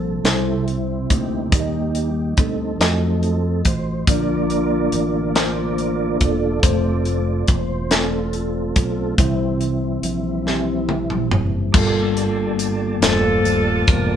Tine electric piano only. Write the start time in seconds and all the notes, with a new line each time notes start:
Already playing: C3 G3 C4 F4 C5
0.24 C3 G3 C4 E4 C5
1.52 G3 A#3 D#4 G4 D5
1.60 D#5
2.80 A3 F4 F#4 D#5
4.08 D3 A#3 D4 F4 D5
5.36 A#3 D4 F4 C5
6.62 G#3 C4 F4 C5
6.68 A3
7.90 A3 C4 F4 D5
9.18 C3 G3 C4 E4 C5
10.46 G3 C4 E4 G4
11.74 G2 G3 A#3 F4 A4
13.02 G3 A3 F4 C5
13.09 A#3